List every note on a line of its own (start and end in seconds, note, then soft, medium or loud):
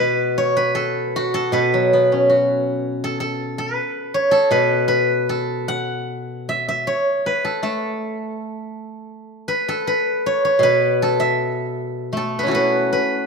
0.00 1.51 B2 soft
0.00 0.56 B4 medium
0.38 2.28 C#5 medium
0.57 1.53 B4 medium
0.75 1.34 A4 medium
1.16 2.29 F#4 medium
1.34 3.03 A4 medium
1.52 3.76 B2 medium
1.52 3.58 B4 medium
1.74 3.22 F#3 soft
1.93 3.41 B3 soft
2.12 3.59 C#4 soft
2.30 3.77 F#4 soft
3.04 3.20 A4 medium
3.20 4.31 A4 medium
3.58 4.51 B4 medium
4.14 6.05 C#5 medium
4.31 5.29 A4 medium
4.51 6.86 B2 soft
4.51 4.88 B4 medium
4.88 6.93 B4 medium
5.29 7.44 A4 medium
5.68 7.29 F#5 medium
6.49 6.68 E5 medium
6.68 8.41 E5 medium
6.87 8.78 C#5 medium
7.26 9.31 B4 medium
7.45 7.63 A4 medium
7.63 9.86 A3 soft
7.63 9.68 A4 medium
9.48 9.87 B4 medium
9.68 11.02 A4 medium
9.87 10.63 B4 medium
10.26 10.44 C#5 medium
10.45 12.36 C#5 medium
10.59 12.91 B2 soft
10.59 12.38 B4 medium
11.02 12.16 A4 medium
11.20 12.92 E5 medium
12.13 13.26 A3 soft
12.17 12.51 A4 medium
12.39 13.26 B3 soft
12.39 12.54 B4 medium
12.43 13.26 C#4 soft
12.43 13.26 E4 soft
12.48 13.26 F#4 soft
12.48 13.26 A4 soft
12.55 12.92 B4 medium
12.93 13.26 B4 medium